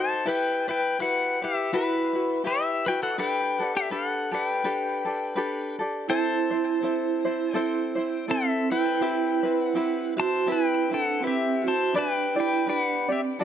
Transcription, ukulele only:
0.00 0.26 D#4 soft
0.00 0.25 F#4 medium
0.26 0.67 E4 medium
0.26 0.67 G4 medium
0.26 0.67 B4 medium
0.68 0.99 E4 soft
0.68 0.98 B4 soft
0.99 1.41 E4 medium
0.99 1.42 F#4 medium
0.99 1.40 G4 medium
0.99 1.41 B4 medium
1.42 1.72 E4 soft
1.42 1.72 B4 soft
1.73 2.14 E4 medium
1.73 2.14 F#4 medium
1.73 2.13 G4 medium
1.73 2.12 B4 medium
2.13 2.43 E4 soft
2.13 2.45 F#4 soft
2.13 2.43 B4 soft
2.44 2.86 E4 medium
2.44 2.86 G4 medium
2.44 2.86 B4 medium
2.87 3.18 E4 soft
2.87 3.18 F#4 medium
2.87 3.17 B4 medium
3.18 3.60 D4 medium
3.18 3.59 G4 medium
3.18 3.58 A4 medium
3.18 3.59 B4 medium
3.59 3.91 D4 soft
3.59 3.90 G4 medium
3.59 3.90 A4 medium
3.91 4.33 D4 medium
3.91 4.32 G4 medium
3.91 4.30 A4 medium
3.91 4.32 B4 medium
4.32 4.63 D4 soft
4.32 4.64 G4 soft
4.32 4.63 A4 soft
4.64 5.05 D4 medium
4.64 5.05 G4 medium
4.64 5.04 A4 medium
4.64 5.06 B4 medium
5.05 5.35 D4 soft
5.05 5.35 G4 soft
5.05 5.36 A4 medium
5.36 5.78 D4 medium
5.36 5.78 G4 medium
5.36 5.78 A4 medium
5.36 5.78 B4 medium
5.79 6.09 D4 soft
5.79 6.10 G4 medium
5.79 6.08 A4 medium
6.09 6.51 C4 medium
6.09 6.51 E4 medium
6.09 6.50 A4 medium
6.09 6.49 C5 medium
6.50 6.82 C4 soft
6.50 6.83 E4 soft
6.50 6.82 C5 medium
6.82 7.24 C4 medium
6.82 7.24 E4 medium
6.82 7.24 A4 medium
6.82 7.24 C5 medium
7.25 7.54 C4 soft
7.25 7.54 E4 medium
7.25 7.54 C5 soft
7.54 7.97 C4 medium
7.54 7.96 E4 medium
7.54 7.95 A4 medium
7.54 7.94 C5 medium
7.95 8.27 C4 soft
7.95 8.28 E4 medium
7.95 8.27 C5 medium
8.28 8.70 C4 medium
8.28 8.70 E4 medium
8.28 8.70 A4 medium
8.28 8.71 C5 medium
8.71 9.01 C4 soft
8.71 9.01 E4 medium
9.01 9.43 C4 medium
9.01 9.44 E4 medium
9.01 9.43 G4 medium
9.01 9.42 B4 medium
9.43 9.74 C4 soft
9.43 9.75 E4 medium
9.43 9.74 B4 medium
9.74 10.17 C4 medium
9.74 10.15 E4 medium
9.74 10.16 G4 medium
9.74 10.17 B4 medium
10.17 10.46 C4 soft
10.17 10.47 E4 medium
10.46 10.89 C4 medium
10.46 10.89 E4 medium
10.46 10.89 G4 medium
10.46 10.88 B4 medium
10.90 11.21 C4 soft
10.90 11.21 E4 soft
10.90 11.21 B4 soft
11.22 11.63 C4 medium
11.22 11.63 E4 medium
11.22 11.63 G4 medium
11.22 11.64 B4 medium
11.64 11.94 C4 soft
11.64 11.94 E4 soft
11.94 12.36 D4 medium
11.94 12.35 G4 medium
11.94 12.36 B4 medium
11.94 12.35 D5 medium
12.36 12.66 D4 soft
12.36 12.67 G4 soft
12.36 12.67 D5 medium
12.66 13.08 D4 medium
12.66 13.08 G4 medium
12.66 13.08 B4 medium
12.66 13.07 D5 medium
13.08 13.39 D4 soft
13.08 13.40 G4 soft
13.08 13.39 D5 soft
13.39 13.44 D4 medium
13.39 13.44 F#4 medium
13.39 13.44 A4 medium
13.39 13.44 D5 medium

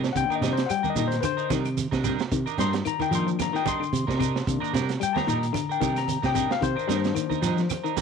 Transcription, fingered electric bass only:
0.15 0.28 C3 medium
0.29 muted fingered electric bass stroke soft
0.41 0.65 C3 medium
0.95 1.19 A#2 medium
1.50 1.86 C3 medium
1.92 2.15 C3 medium
2.32 2.44 C3 loud
2.58 2.81 G2 medium
2.99 muted fingered electric bass stroke soft
3.11 3.34 F3 medium
3.93 4.05 C3 medium
4.08 4.41 C3 medium
4.47 4.59 C3 loud
4.62 muted fingered electric bass stroke soft
4.73 4.96 C3 medium
5.27 5.50 A#2 medium
5.81 6.17 C3 medium
6.23 6.46 C3 medium
6.62 6.75 C3 loud
6.89 7.12 G2 medium
7.30 muted fingered electric bass stroke soft
7.42 7.65 F3 medium

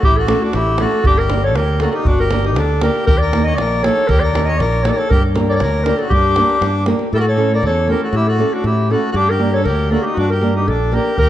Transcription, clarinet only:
0.04 0.18 G4 loud
0.16 0.44 A4 medium
0.42 0.56 F#4 medium
0.55 0.82 G4 medium
0.80 1.06 A4 medium
1.06 1.19 G4 loud
1.18 1.43 A#4 medium
1.43 1.58 C#5 medium
1.56 1.82 A#4 medium
1.81 1.90 A4 medium
1.90 2.07 G4 medium
1.90 1.95 A4 medium
2.06 2.21 F#4 loud
2.20 2.46 A#4 medium
2.45 2.59 G4 medium
2.57 2.82 A4 medium
2.82 3.06 A#4 medium
3.07 3.19 A#4 loud
3.18 3.45 D5 medium
3.44 3.55 D#5 loud
3.56 3.85 D5 medium
3.83 4.09 C#5 loud
4.07 4.21 A#4 loud
4.20 4.47 D5 medium
4.45 4.59 D#5 medium
4.57 4.85 D5 medium
4.83 4.90 C#5 medium
4.88 4.98 D5 medium
4.96 5.09 C#5 medium
5.09 5.22 A#4 loud
5.49 5.55 C#5 medium
5.49 5.52 D5 medium
5.54 5.60 D5 loud
5.59 5.85 C#5 medium
5.84 5.99 A#4 medium
5.97 6.09 A4 medium
6.09 6.82 G4 loud
7.14 7.17 A4 medium
7.14 7.22 A#4 medium
7.21 7.30 A4 medium
7.28 7.52 C#5 medium
7.55 7.64 D5 medium
7.66 7.88 C#5 medium
7.90 8.05 A#4 medium
8.03 8.17 A4 medium
8.15 8.29 G4 loud
8.27 8.55 A4 medium
8.53 8.65 F#4 medium
8.65 8.93 G4 medium
8.91 9.12 A4 medium
9.12 9.17 A4 medium
9.16 9.31 G4 loud
9.30 9.53 A#4 medium
9.53 9.64 C#5 medium
9.65 9.92 A#4 medium
9.90 10.04 A4 medium
10.02 10.16 G4 medium
10.14 10.28 F#4 loud
10.30 10.53 A#4 medium
10.56 10.69 G4 medium
10.68 10.94 A4 medium
10.92 11.18 A#4 medium
11.18 11.29 A#4 loud

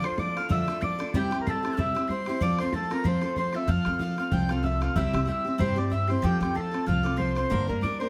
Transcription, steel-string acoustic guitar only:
0.02 0.18 D4 soft
0.02 0.18 F4 soft
0.02 0.17 A4 medium
0.17 0.36 F3 medium
0.17 0.37 D4 soft
0.17 0.37 F4 medium
0.17 0.36 A4 soft
0.37 0.49 D4 soft
0.37 0.49 F4 soft
0.37 0.50 A4 medium
0.49 0.67 D3 medium
0.49 0.68 F3 medium
0.49 0.68 D4 medium
0.49 0.68 F4 medium
0.49 0.66 A4 medium
0.67 0.81 D4 soft
0.67 0.82 F4 medium
0.67 0.82 A4 medium
0.81 0.99 F3 medium
0.81 1.00 D4 soft
0.81 0.99 F4 medium
0.81 0.97 A4 medium
0.99 1.14 D4 medium
0.99 1.14 F4 soft
0.99 1.13 A4 medium
1.14 1.32 C3 medium
1.14 1.32 G3 medium
1.14 1.32 C4 medium
1.14 1.32 E4 medium
1.14 1.30 G4 loud
1.31 1.46 C4 soft
1.31 1.46 E4 medium
1.31 1.45 G4 medium
1.46 1.64 G3 medium
1.46 1.64 C4 medium
1.46 1.64 E4 medium
1.46 1.62 G4 medium
1.63 1.77 C4 soft
1.63 1.78 E4 soft
1.63 1.77 G4 soft
1.77 1.95 C3 medium
1.77 1.95 G3 medium
1.77 1.95 C4 medium
1.77 1.95 E4 medium
1.77 1.93 G4 medium
1.95 2.09 C4 soft
1.95 2.10 E4 soft
1.95 2.09 G4 medium
2.09 2.27 G3 soft
2.09 2.28 C4 medium
2.09 2.28 E4 soft
2.09 2.26 G4 soft
2.27 2.40 C4 soft
2.27 2.42 E4 medium
2.27 2.41 G4 medium
2.41 2.59 F3 medium
2.41 2.59 C4 medium
2.41 2.59 F4 loud
2.41 2.57 A4 loud
2.58 2.73 C4 soft
2.58 2.74 F4 soft
2.58 2.73 A4 medium
2.73 2.91 F3 soft
2.73 2.91 C4 medium
2.73 2.90 F4 soft
2.73 2.89 A4 medium
2.90 3.04 C4 soft
2.90 3.04 F4 medium
2.90 3.05 A4 medium
3.04 3.22 F3 medium
3.04 3.23 C4 medium
3.04 3.22 F4 medium
3.04 3.20 A4 medium
3.21 3.36 C4 soft
3.21 3.37 F4 medium
3.21 3.36 A4 medium
3.36 3.54 F3 medium
3.36 3.55 C4 soft
3.36 3.53 F4 medium
3.36 3.52 A4 medium
3.53 3.67 C4 soft
3.53 3.68 F4 medium
3.53 3.68 A4 medium
3.68 3.86 F3 medium
3.68 3.86 C4 medium
3.68 3.86 F4 medium
3.68 3.84 A4 medium
3.85 3.99 C4 soft
3.85 4.00 F4 soft
3.85 4.00 A4 medium
3.99 4.17 F3 medium
3.99 4.18 C4 medium
3.99 4.16 F4 medium
3.99 4.15 A4 medium
4.16 4.31 C4 soft
4.16 4.32 F4 soft
4.16 4.31 A4 soft
4.31 4.49 F3 medium
4.31 4.50 C4 medium
4.31 4.49 F4 medium
4.31 4.48 A4 medium
4.49 4.62 C4 medium
4.49 4.63 F4 soft
4.49 4.63 A4 medium
4.63 4.81 F3 soft
4.63 4.81 C4 medium
4.63 4.81 F4 medium
4.63 4.79 A4 medium
4.81 4.96 C4 soft
4.81 4.96 F4 medium
4.81 4.95 A4 medium
4.96 5.13 C3 medium
4.96 5.14 G3 medium
4.96 5.14 C4 medium
4.96 5.14 E4 medium
4.96 5.12 G4 medium
5.13 5.26 C4 soft
5.13 5.26 E4 soft
5.13 5.27 G4 medium
5.25 5.44 G3 medium
5.25 5.45 C4 soft
5.25 5.45 E4 medium
5.25 5.43 G4 medium
5.44 5.58 C4 soft
5.44 5.59 E4 soft
5.44 5.59 G4 soft
5.58 5.76 C3 medium
5.58 5.77 G3 medium
5.58 5.77 C4 medium
5.58 5.76 E4 medium
5.58 5.75 G4 medium
5.76 5.90 C4 soft
5.76 5.91 E4 soft
5.76 5.91 G4 medium
5.90 6.08 G3 soft
5.90 6.09 C4 medium
5.90 6.08 E4 medium
5.90 6.06 G4 medium
6.08 6.22 C4 soft
6.08 6.23 E4 medium
6.08 6.23 G4 medium
6.22 6.40 F3 medium
6.22 6.41 C4 medium
6.22 6.41 F4 medium
6.22 6.39 A4 loud
6.40 6.54 C4 soft
6.40 6.55 F4 soft
6.40 6.55 A4 medium
6.54 6.72 F3 soft
6.54 6.73 C4 medium
6.54 6.72 F4 medium
6.54 6.70 A4 soft
6.71 6.86 C4 soft
6.71 6.87 F4 medium
6.71 6.86 A4 soft
6.86 7.04 F3 medium
6.86 7.05 C4 medium
6.86 7.03 F4 medium
6.86 7.02 A4 medium
7.03 7.16 C4 soft
7.03 7.18 F4 medium
7.03 7.18 A4 medium
7.16 7.35 F3 medium
7.16 7.36 C4 medium
7.16 7.36 F4 soft
7.16 7.34 A4 medium
7.35 7.51 C4 soft
7.35 7.51 F4 medium
7.35 7.50 A4 medium
7.50 7.68 G2 medium
7.50 7.68 D3 medium
7.50 7.68 G3 medium
7.50 7.68 A#3 loud
7.50 7.68 D4 medium
7.50 7.66 A#4 loud
7.67 7.80 G3 soft
7.67 7.81 A#3 soft
7.67 7.82 D4 soft
7.67 7.82 A#4 medium
7.81 8.00 G3 soft
7.81 8.00 A#3 medium
7.81 8.00 D4 medium
7.81 7.99 A#4 medium
8.00 8.09 G3 soft
8.00 8.09 A#3 soft
8.00 8.09 D4 soft
8.00 8.09 A#4 medium

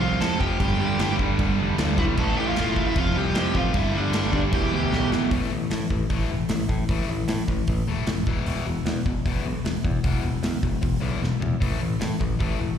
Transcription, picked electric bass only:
0.01 0.19 C2 medium
0.21 0.39 F2 medium
0.40 0.59 F1 medium
0.60 0.78 G1 medium
0.80 0.98 G1 medium
0.99 1.18 G1 medium
1.19 1.38 G2 medium
1.39 1.57 G1 medium
1.59 1.77 F1 medium
1.79 1.97 D2 medium
1.98 2.16 B1 loud
2.17 2.54 A1 loud
2.58 2.94 E1 medium
2.96 3.14 F1 medium
3.16 3.34 C2 medium
3.36 3.54 F2 loud
3.55 3.73 A1 medium
3.74 3.93 G1 medium
3.94 4.12 G1 medium
4.14 4.32 G1 loud
4.33 4.52 G2 medium
4.52 4.71 E1 medium
4.72 4.91 D2 medium
4.92 5.11 B1 medium
5.12 5.30 G#1 medium
5.31 5.46 A1 medium
5.51 5.65 A1 medium
5.71 5.85 A2 medium
5.90 6.05 A1 medium
6.10 6.24 A1 medium
6.30 6.44 E1 medium
6.49 6.63 A1 medium
6.69 6.83 A2 medium
6.89 7.03 A1 medium
7.08 7.22 A1 medium
7.28 7.42 A2 medium
7.48 7.62 A1 medium
7.68 7.82 A1 medium
7.87 8.01 E1 medium
8.07 8.21 F1 medium
8.27 8.41 E1 medium
8.46 8.60 E1 medium
8.65 8.80 E1 medium
8.86 9.00 E2 medium
9.05 9.19 E1 medium
9.25 9.39 E1 medium
9.45 9.59 B1 medium
9.65 9.79 E1 medium
9.84 9.98 E2 medium
10.04 10.18 E1 medium
10.23 10.37 E1 medium
10.43 10.57 E2 medium
10.63 10.77 E1 medium
10.83 10.97 E1 medium
11.02 11.16 B1 medium
11.22 11.36 E1 medium
11.41 11.56 E2 medium
11.62 11.76 A1 medium
11.81 11.95 A1 medium
12.01 12.15 A2 medium
12.20 12.34 A1 medium
12.41 12.54 A1 medium
12.59 12.73 E1 medium

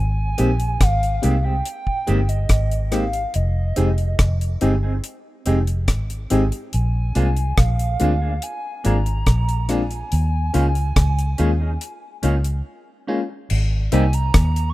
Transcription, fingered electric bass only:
0.00 0.34 G#1 loud
0.39 0.76 A#1 medium
0.81 1.18 G#1 medium
1.24 1.61 C2 medium
2.08 2.45 G1 medium
2.50 3.24 G#1 loud
3.36 3.72 F1 medium
3.78 4.15 F1 medium
4.20 4.57 F1 medium
4.62 4.99 G1 medium
5.47 5.88 F1 medium
5.88 6.26 G#1 medium
6.31 6.50 G#1 medium
6.74 7.11 A#1 medium
7.16 7.53 C2 medium
7.58 7.95 A#1 medium
8.01 8.38 D2 medium
8.86 9.22 G#1 medium
9.27 10.02 A#1 medium
10.13 10.49 D#2 medium
10.55 10.92 C#2 medium
10.97 11.34 C#2 medium
11.39 11.76 D#2 medium
12.24 12.61 C#2 medium
13.51 13.88 G#1 loud
13.93 14.30 C2 medium
14.35 14.72 D#2 loud

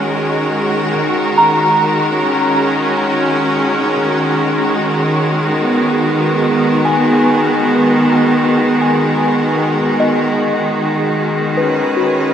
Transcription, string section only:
0.00 0.94 D#3 medium
0.00 0.96 G#3 medium
0.00 0.97 C#4 medium
0.00 12.34 F#4 medium
0.00 10.36 A#4 medium
0.95 12.34 D#3 medium
1.09 12.34 G#3 medium
2.12 5.83 C#4 medium
5.58 10.36 B3 medium
11.59 12.34 C#4 medium
11.59 12.34 B4 medium

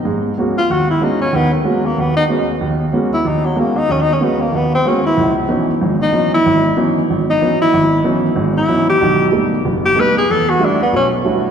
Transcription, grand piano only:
0.05 0.33 G#2 medium
0.05 0.33 G#3 medium
0.38 0.58 G#3 medium
0.38 0.59 A#3 medium
0.38 0.59 B3 soft
0.38 0.59 C#4 soft
0.38 0.59 F#4 medium
0.70 0.97 D#2 medium
1.01 1.22 G#3 medium
1.01 1.22 A#3 soft
1.01 1.22 B3 soft
1.01 1.22 C#4 medium
1.01 1.22 F#4 medium
1.33 1.60 D#2 medium
1.33 1.60 D#3 medium
1.64 1.86 G#3 medium
1.64 1.86 A#3 medium
1.64 1.86 B3 soft
1.64 1.86 C#4 medium
1.64 1.86 F#4 medium
1.98 2.25 D#2 medium
2.29 2.50 G#3 medium
2.29 2.50 A#3 soft
2.29 2.50 B3 medium
2.29 2.50 C#4 medium
2.29 2.50 F#4 medium
2.61 2.88 D#2 medium
2.93 3.14 G#3 medium
2.93 3.14 A#3 medium
2.93 3.14 B3 medium
2.93 3.14 C#4 medium
2.93 3.14 F#4 medium
3.25 3.52 D#2 medium
3.56 3.78 G#3 medium
3.56 3.77 A#3 medium
3.56 3.77 B3 soft
3.56 3.78 C#4 medium
3.56 3.78 F#4 medium
3.89 4.16 D#2 medium
4.20 4.42 G#3 medium
4.20 4.42 A#3 soft
4.20 4.42 B3 medium
4.20 4.42 C#4 soft
4.20 4.42 F#4 medium
4.52 4.80 D#2 medium
4.85 5.06 G#3 medium
4.85 5.06 A#3 medium
4.85 5.06 B3 soft
4.85 5.06 C#4 soft
4.85 5.06 F#4 medium
5.17 5.45 C#2 medium
5.49 5.70 E3 medium
5.49 5.70 F#3 medium
5.49 5.70 B3 medium
5.49 5.70 C#4 medium
5.49 5.70 D#4 medium
5.81 6.09 G#1 medium
5.81 6.09 G#2 medium
6.13 6.34 E3 medium
6.13 6.34 F#3 soft
6.13 6.34 B3 soft
6.13 6.34 C#4 soft
6.13 6.34 D#4 medium
6.46 6.73 G#1 medium
6.77 6.98 E3 medium
6.77 6.98 F#3 medium
6.77 6.98 B3 medium
6.77 6.98 C#4 medium
6.77 6.98 D#4 medium
7.10 7.37 G#1 medium
7.41 7.62 E3 medium
7.41 7.62 F#3 medium
7.41 7.62 B3 soft
7.41 7.62 C#4 soft
7.41 7.62 D#4 medium
7.73 8.01 G#1 medium
8.04 8.26 E3 medium
8.04 8.26 F#3 medium
8.04 8.26 B3 medium
8.04 8.26 C#4 medium
8.04 8.26 D#4 medium
8.36 8.64 G#1 medium
8.36 8.64 G#2 medium
8.69 8.90 E3 medium
8.69 8.90 F#3 medium
8.69 8.90 B3 medium
8.69 8.90 C#4 medium
8.69 8.90 D#4 medium
9.01 9.29 B1 medium
9.01 9.29 D#3 medium
9.32 9.53 G3 medium
9.32 9.54 A3 medium
9.32 9.54 B3 medium
9.32 9.54 D#4 medium
9.65 9.93 F#1 medium
9.96 10.18 G3 medium
9.96 10.17 A3 medium
9.96 10.18 B3 medium
9.96 10.18 D#4 medium
10.30 10.57 E2 medium
10.59 10.81 G3 medium
10.59 10.82 A3 medium
10.59 10.82 D4 medium
10.59 10.82 E4 medium
10.59 10.82 F#4 medium
10.92 11.20 B1 medium
10.92 11.21 B2 medium
11.25 11.46 G3 medium
11.25 11.46 A3 soft
11.25 11.46 D4 medium
11.25 11.46 E4 soft
11.25 11.46 F#4 medium

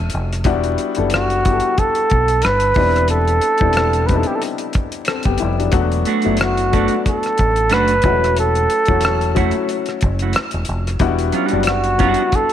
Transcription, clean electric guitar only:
6.07 6.37 A3 medium
6.07 6.37 D4 medium
6.07 6.38 F#4 medium
6.41 muted clean electric guitar stroke soft
6.73 6.95 A3 medium
6.73 6.95 D4 medium
6.73 6.95 F#4 medium
7.71 7.93 A3 medium
7.71 7.93 D4 medium
7.71 7.93 F#4 medium
9.36 9.54 A3 medium
9.36 9.54 E4 medium
9.36 9.55 F#4 medium
10.22 10.36 A3 soft
10.22 10.36 E4 soft
10.22 10.35 F#4 soft
11.33 11.46 F#3 medium
11.33 11.47 C#4 medium
11.33 11.47 F4 medium
11.46 11.64 G3 medium
11.46 11.64 D4 medium
11.46 11.64 F#4 medium
11.67 muted clean electric guitar stroke soft
11.99 12.21 G3 medium
11.99 12.22 D4 medium
11.99 12.22 F#4 medium

